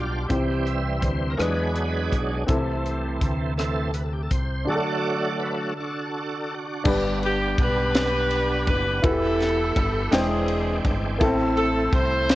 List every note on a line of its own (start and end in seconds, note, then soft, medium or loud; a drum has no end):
0.00 0.27 B1 medium
0.00 0.26 B2 medium
0.00 0.30 G3 soft
0.00 0.30 B3 soft
0.00 0.26 D4 soft
0.00 0.30 D4 soft
0.00 0.27 F4 soft
0.00 0.30 F4 soft
0.00 0.68 G4 medium
0.00 0.30 B4 medium
0.28 0.99 C2 medium
0.28 1.36 C3 medium
0.28 1.35 E3 soft
0.28 1.35 G3 soft
0.28 1.35 C4 medium
0.28 1.39 C4 medium
0.28 1.38 E4 soft
0.28 1.40 G4 medium
0.28 kick medium
0.28 closed hi-hat medium
0.66 1.04 E5 medium
0.66 closed hi-hat soft
1.01 1.37 D2 medium
1.01 1.32 C5 medium
1.01 kick medium
1.01 closed hi-hat medium
1.30 1.39 A#4 soft
1.38 2.09 E2 medium
1.38 2.45 E3 medium
1.38 2.44 F#3 soft
1.38 2.44 G#3 soft
1.38 2.48 G#3 medium
1.38 2.49 B3 soft
1.38 2.45 D4 medium
1.38 2.49 D4 medium
1.38 2.47 E4 soft
1.38 2.44 G#4 medium
1.38 2.17 B4 medium
1.38 2.49 B4 medium
1.38 cross-stick medium
1.38 closed hi-hat medium
1.76 closed hi-hat soft
2.12 2.46 B1 medium
2.12 kick medium
2.12 closed hi-hat medium
2.47 3.18 C2 medium
2.47 3.54 C3 medium
2.47 3.54 E3 medium
2.47 3.54 A3 soft
2.47 4.62 C4 medium
2.47 3.54 C4 medium
2.47 4.63 E4 medium
2.47 4.64 A4 medium
2.47 kick medium
2.47 closed hi-hat medium
2.86 closed hi-hat soft
3.21 4.27 D2 medium
3.21 kick medium
3.21 closed hi-hat medium
3.58 3.91 E3 soft
3.58 3.91 A3 soft
3.58 3.92 C4 soft
3.58 3.96 A4 medium
3.58 cross-stick medium
3.58 closed hi-hat medium
3.94 4.03 B4 medium
3.94 closed hi-hat medium
4.04 4.13 A4 medium
4.13 4.22 G4 medium
4.23 4.32 A4 medium
4.31 4.64 C2 medium
4.31 4.69 C5 medium
4.31 kick medium
4.31 closed hi-hat medium
4.65 5.72 D3 medium
4.65 5.73 F#3 soft
4.65 6.80 D4 medium
4.65 6.81 F#4 soft
4.65 4.74 G#4 medium
4.65 5.43 D5 loud
4.69 5.74 A3 soft
4.69 5.74 D4 medium
4.69 5.74 F#4 medium
4.69 5.74 A4 medium
4.75 6.86 A4 medium
5.40 5.56 B4 medium
5.77 6.84 D4 medium
5.77 6.84 F#4 soft
5.77 6.55 A4 medium
6.84 7.54 G1 medium
6.84 7.91 G2 medium
6.84 9.01 B3 medium
6.84 8.99 D4 medium
6.84 9.00 D4 medium
6.84 9.00 G4 medium
6.84 9.00 G4 loud
6.84 9.00 B4 medium
6.84 kick loud
6.84 crash medium
7.23 7.58 G4 loud
7.23 ride bell soft
7.58 8.69 B1 medium
7.58 8.65 D4 medium
7.58 8.65 G4 medium
7.58 kick medium
7.58 ride bell soft
7.62 8.68 B4 loud
7.95 snare medium
7.95 ride bell medium
8.31 ride bell soft
8.67 9.01 F#1 loud
8.67 9.02 B4 medium
8.67 kick medium
8.67 ride bell soft
9.02 9.72 E1 loud
9.02 10.08 E3 medium
9.02 10.13 B3 medium
9.02 10.11 E4 medium
9.02 10.09 E4 medium
9.02 9.10 F#4 soft
9.02 9.11 F#4 medium
9.02 10.13 A4 medium
9.02 10.13 B4 medium
9.02 kick loud
9.02 ride bell medium
9.07 10.14 E4 medium
9.07 10.16 G4 medium
9.13 10.17 G4 medium
9.40 snare soft
9.40 ride bell soft
9.76 10.09 G1 loud
9.76 kick medium
9.76 ride bell soft
10.11 10.81 E1 medium
10.11 11.17 E3 medium
10.11 11.22 E3 medium
10.11 11.21 G#3 medium
10.11 11.18 C4 medium
10.11 11.21 D4 medium
10.11 11.17 D4 medium
10.11 11.18 D4 medium
10.11 11.19 E4 medium
10.11 10.94 G#4 medium
10.11 11.21 C5 medium
10.11 11.21 G5 medium
10.11 snare medium
10.11 ride bell medium
10.48 ride bell medium
10.85 11.18 G1 loud
10.85 kick medium
10.85 ride bell soft
11.19 11.89 A1 loud
11.19 12.25 A2 medium
11.19 12.35 A3 medium
11.19 11.26 B3 medium
11.19 12.35 C4 medium
11.19 11.27 D4 medium
11.19 12.35 E4 medium
11.19 12.35 A4 loud
11.19 kick loud
11.19 ride bell medium
11.25 12.35 C4 medium
11.25 12.35 E4 medium
11.57 11.91 A4 loud
11.57 ride bell soft
11.92 12.35 C2 medium
11.92 12.35 E4 medium
11.92 12.35 A4 medium
11.92 12.35 C5 loud
11.92 kick loud
11.92 ride bell soft
12.29 snare loud
12.29 ride bell medium